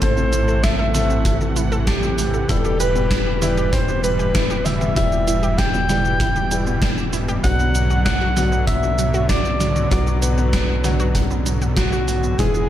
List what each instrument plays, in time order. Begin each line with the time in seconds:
Already playing: analog synth pad C3 E3 A3
0.02 analog synth bass A1, grand piano A3 C4 E4 A4, fm electric piano C5, alto saxophone C5, analog synth pad F#5, synth arpeggio sound A5, kick, closed hi-hat, cabasa
0.17 synth arpeggio sound C4, cabasa
0.33 synth arpeggio sound A3, closed hi-hat, cabasa
0.48 synth arpeggio sound A4, cabasa
0.64 synth arpeggio sound E4, alto saxophone E5, fm electric piano E5, kick, snare, closed hi-hat, cabasa
0.79 synth arpeggio sound A4
0.94 grand piano A3 C4 E4 A4, synth arpeggio sound A5, snare, open hi-hat, mid tom, cabasa
1.10 synth arpeggio sound C4, cabasa
1.25 synth arpeggio sound A3, kick, closed hi-hat, cabasa
1.41 synth arpeggio sound A4, cabasa
1.56 synth arpeggio sound E4, closed hi-hat, cabasa
1.72 synth arpeggio sound A4, cabasa
1.87 alto saxophone G4, fm electric piano G4, synth arpeggio sound A5, kick, snare, closed hi-hat, cabasa
2.03 synth arpeggio sound C4, cabasa
2.18 synth arpeggio sound A3, open hi-hat, cabasa
2.34 synth arpeggio sound A4, cabasa
2.49 analog synth bass E1, analog synth pad B2 G3 G4, grand piano G3 B3 E4 G4, synth arpeggio sound E4, alto saxophone A4, fm electric piano A4, kick, closed hi-hat, cabasa
2.65 synth arpeggio sound G4, cabasa
2.80 alto saxophone B4, fm electric piano B4, synth arpeggio sound G5, closed hi-hat, cabasa
2.96 synth arpeggio sound B3, cabasa
3.11 synth arpeggio sound G3, kick, snare, closed hi-hat, cabasa
3.27 synth arpeggio sound G4
3.42 grand piano G3 E4 G4, synth arpeggio sound E4, fm electric piano B4, alto saxophone B4, open hi-hat, mid tom, cabasa
3.57 synth arpeggio sound G4, cabasa
3.73 fm electric piano C5, alto saxophone C5, synth arpeggio sound G5, kick, closed hi-hat, cabasa
3.88 synth arpeggio sound B3, cabasa
4.04 synth arpeggio sound G3, fm electric piano B4, alto saxophone B4, closed hi-hat, cabasa
4.19 synth arpeggio sound G4, cabasa
4.35 synth arpeggio sound E4, kick, snare, closed hi-hat, cabasa
4.50 synth arpeggio sound G4, cabasa
4.66 fm electric piano E5, alto saxophone E5, synth arpeggio sound G5, open hi-hat, mid tom, cabasa
4.81 synth arpeggio sound B3, mid tom, cabasa
4.96 analog synth bass E1, grand piano G3 B3 E4 G4, synth arpeggio sound G3, fm electric piano E5, alto saxophone E5, kick, closed hi-hat, cabasa
5.12 synth arpeggio sound G4, cabasa
5.28 synth arpeggio sound E4, closed hi-hat, cabasa
5.43 synth arpeggio sound G4, cabasa
5.58 synth arpeggio sound G5, fm electric piano G5, alto saxophone G5, kick, snare, closed hi-hat, cabasa
5.74 synth arpeggio sound B3, cabasa
5.89 synth arpeggio sound G3, grand piano G3 B3 E4 G4, snare, open hi-hat, mid tom, cabasa
6.05 synth arpeggio sound G4, cabasa
6.20 synth arpeggio sound E4, kick, closed hi-hat, cabasa
6.36 synth arpeggio sound G4, cabasa
6.51 grand piano G3 B3 E4 G4, synth arpeggio sound G5, closed hi-hat, cabasa
6.67 synth arpeggio sound B3, cabasa
6.82 synth arpeggio sound G3, kick, snare, closed hi-hat, cabasa
6.98 synth arpeggio sound G4, cabasa
7.13 synth arpeggio sound E4, open hi-hat, cabasa
7.28 synth arpeggio sound G4, cabasa
7.44 analog synth bass B1, analog synth pad D3 F#3, grand piano F#3 B3 D4 F#4, alto saxophone F#5, synth arpeggio sound F#5, fm electric piano F#5, kick, closed hi-hat, cabasa
7.59 synth arpeggio sound B3, cabasa
7.75 synth arpeggio sound F#3, closed hi-hat, cabasa
7.90 synth arpeggio sound F#4, cabasa
8.06 synth arpeggio sound F#3, alto saxophone F#5, fm electric piano F#5, kick, snare, closed hi-hat, cabasa
8.21 synth arpeggio sound F#4
8.37 grand piano F#3 B3 D4 F#4, synth arpeggio sound F#5, open hi-hat, mid tom, cabasa
8.52 synth arpeggio sound B3, cabasa
8.68 synth arpeggio sound F#3, alto saxophone E5, fm electric piano E5, kick, closed hi-hat, cabasa
8.83 synth arpeggio sound F#4, cabasa
8.99 synth arpeggio sound F#3, closed hi-hat, cabasa
9.14 synth arpeggio sound F#4, cabasa
9.29 alto saxophone D5, fm electric piano D5, synth arpeggio sound F#5, kick, snare, closed hi-hat, cabasa
9.45 synth arpeggio sound B3, cabasa
9.60 synth arpeggio sound F#3, open hi-hat, mid tom, cabasa
9.76 synth arpeggio sound F#4, mid tom, cabasa
9.91 analog synth bass B1, synth arpeggio sound F#3, grand piano F#3 B3 D4 F#4, alto saxophone D5, fm electric piano D5, kick, closed hi-hat, cabasa
10.07 synth arpeggio sound F#4, cabasa
10.22 alto saxophone B4, fm electric piano B4, synth arpeggio sound F#5, closed hi-hat, cabasa
10.38 synth arpeggio sound B3, cabasa
10.53 synth arpeggio sound F#3, kick, snare, closed hi-hat, cabasa
10.69 synth arpeggio sound F#4
10.84 synth arpeggio sound F#3, grand piano F#3 B3 D4 F#4, snare, open hi-hat, mid tom, cabasa
11.00 synth arpeggio sound F#4, cabasa
11.15 synth arpeggio sound F#5, kick, closed hi-hat, cabasa
11.31 synth arpeggio sound B3, cabasa
11.46 synth arpeggio sound F#3, closed hi-hat, cabasa
11.62 synth arpeggio sound F#4, cabasa
11.77 synth arpeggio sound F#3, alto saxophone F#4, fm electric piano F#4, kick, snare, closed hi-hat, cabasa
11.92 synth arpeggio sound F#4, cabasa
12.08 synth arpeggio sound F#5, open hi-hat, cabasa
12.23 synth arpeggio sound B3, cabasa
12.39 analog synth bass E1, analog synth pad E3 G#3 G#4, synth arpeggio sound G#3, grand piano G#3 B3 E4 G#4, fm electric piano G#4, alto saxophone G#4, kick, closed hi-hat, cabasa
12.54 synth arpeggio sound G#4, cabasa